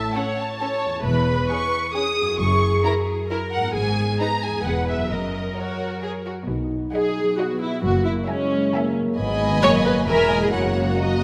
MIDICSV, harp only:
0, 0, Header, 1, 2, 480
1, 0, Start_track
1, 0, Tempo, 451807
1, 1110, Time_signature, 3, 2, 24, 8
1, 11938, End_track
2, 0, Start_track
2, 0, Title_t, "Harp"
2, 0, Program_c, 0, 46
2, 0, Note_on_c, 0, 45, 39
2, 0, Note_on_c, 0, 61, 35
2, 0, Note_on_c, 0, 64, 34
2, 0, Note_on_c, 0, 69, 37
2, 915, Note_on_c, 0, 40, 48
2, 950, Note_off_c, 0, 61, 0
2, 963, Note_on_c, 0, 61, 39
2, 1000, Note_off_c, 0, 64, 0
2, 1013, Note_on_c, 0, 64, 35
2, 1033, Note_off_c, 0, 45, 0
2, 1059, Note_on_c, 0, 68, 40
2, 1106, Note_off_c, 0, 69, 0
2, 2352, Note_on_c, 0, 42, 47
2, 2387, Note_off_c, 0, 61, 0
2, 2400, Note_on_c, 0, 61, 43
2, 2437, Note_off_c, 0, 64, 0
2, 2450, Note_on_c, 0, 64, 45
2, 2466, Note_off_c, 0, 40, 0
2, 2492, Note_on_c, 0, 70, 42
2, 2538, Note_off_c, 0, 68, 0
2, 3778, Note_on_c, 0, 44, 52
2, 3831, Note_on_c, 0, 59, 44
2, 3880, Note_on_c, 0, 63, 39
2, 3903, Note_off_c, 0, 42, 0
2, 3925, Note_on_c, 0, 71, 46
2, 3927, Note_off_c, 0, 61, 0
2, 3952, Note_off_c, 0, 64, 0
2, 3973, Note_off_c, 0, 70, 0
2, 4748, Note_on_c, 0, 40, 43
2, 4782, Note_off_c, 0, 59, 0
2, 4795, Note_on_c, 0, 59, 39
2, 4843, Note_on_c, 0, 68, 37
2, 4859, Note_off_c, 0, 44, 0
2, 4879, Note_off_c, 0, 71, 0
2, 4892, Note_on_c, 0, 71, 39
2, 4910, Note_off_c, 0, 63, 0
2, 5237, Note_on_c, 0, 42, 39
2, 5283, Note_on_c, 0, 54, 35
2, 5332, Note_on_c, 0, 66, 33
2, 5351, Note_off_c, 0, 40, 0
2, 5374, Note_off_c, 0, 59, 0
2, 5378, Note_on_c, 0, 70, 31
2, 5398, Note_off_c, 0, 68, 0
2, 5423, Note_off_c, 0, 71, 0
2, 6809, Note_off_c, 0, 42, 0
2, 6880, Note_off_c, 0, 70, 0
2, 6892, Note_on_c, 0, 47, 47
2, 7054, Note_on_c, 0, 63, 39
2, 7204, Note_on_c, 0, 59, 32
2, 7345, Note_off_c, 0, 54, 0
2, 7358, Note_on_c, 0, 54, 35
2, 7513, Note_off_c, 0, 63, 0
2, 7525, Note_on_c, 0, 63, 31
2, 7674, Note_off_c, 0, 54, 0
2, 7687, Note_on_c, 0, 54, 34
2, 7836, Note_off_c, 0, 59, 0
2, 7849, Note_on_c, 0, 59, 37
2, 7987, Note_off_c, 0, 54, 0
2, 7999, Note_on_c, 0, 54, 32
2, 8144, Note_off_c, 0, 59, 0
2, 8157, Note_on_c, 0, 59, 37
2, 8315, Note_on_c, 0, 42, 49
2, 8335, Note_off_c, 0, 59, 0
2, 8336, Note_off_c, 0, 63, 0
2, 8340, Note_off_c, 0, 47, 0
2, 8480, Note_on_c, 0, 64, 43
2, 8633, Note_on_c, 0, 49, 38
2, 8796, Note_on_c, 0, 56, 44
2, 8939, Note_off_c, 0, 64, 0
2, 8952, Note_on_c, 0, 64, 36
2, 9098, Note_off_c, 0, 56, 0
2, 9111, Note_on_c, 0, 56, 41
2, 9249, Note_off_c, 0, 49, 0
2, 9262, Note_on_c, 0, 49, 46
2, 9406, Note_off_c, 0, 56, 0
2, 9418, Note_on_c, 0, 56, 38
2, 9475, Note_off_c, 0, 66, 0
2, 9568, Note_off_c, 0, 49, 0
2, 9581, Note_on_c, 0, 49, 48
2, 9741, Note_on_c, 0, 44, 63
2, 9763, Note_off_c, 0, 49, 0
2, 9765, Note_off_c, 0, 42, 0
2, 9765, Note_off_c, 0, 54, 0
2, 9765, Note_off_c, 0, 64, 0
2, 9896, Note_on_c, 0, 63, 54
2, 10065, Note_on_c, 0, 51, 48
2, 10211, Note_off_c, 0, 56, 0
2, 10224, Note_on_c, 0, 56, 51
2, 10369, Note_off_c, 0, 63, 0
2, 10381, Note_on_c, 0, 63, 41
2, 10529, Note_off_c, 0, 56, 0
2, 10542, Note_on_c, 0, 56, 49
2, 10696, Note_on_c, 0, 40, 58
2, 10723, Note_off_c, 0, 44, 0
2, 10724, Note_off_c, 0, 63, 0
2, 10726, Note_off_c, 0, 51, 0
2, 10854, Note_on_c, 0, 59, 33
2, 11024, Note_on_c, 0, 64, 36
2, 11032, Note_on_c, 0, 68, 40
2, 11181, Note_on_c, 0, 42, 52
2, 11204, Note_off_c, 0, 59, 0
2, 11205, Note_off_c, 0, 40, 0
2, 11208, Note_off_c, 0, 56, 0
2, 11209, Note_off_c, 0, 64, 0
2, 11211, Note_off_c, 0, 68, 0
2, 11352, Note_on_c, 0, 61, 37
2, 11515, Note_on_c, 0, 49, 34
2, 11667, Note_on_c, 0, 58, 35
2, 11813, Note_off_c, 0, 61, 0
2, 11826, Note_on_c, 0, 61, 31
2, 11938, Note_off_c, 0, 42, 0
2, 11938, Note_off_c, 0, 49, 0
2, 11938, Note_off_c, 0, 58, 0
2, 11938, Note_off_c, 0, 61, 0
2, 11938, End_track
0, 0, End_of_file